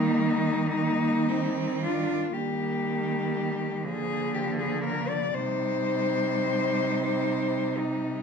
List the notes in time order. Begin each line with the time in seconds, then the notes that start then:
Already playing: D#3 G3 A#3 D#4
0.76 A#3
1.29 C4
1.83 D4 F4
2.33 D#3 G3 A#3 G4
3.83 D3 F3 A#3 G#4
4.34 G4
4.59 G#4
4.85 A#4
5.09 D5
5.34 C3 G3 D#4 C5
7.78 D#4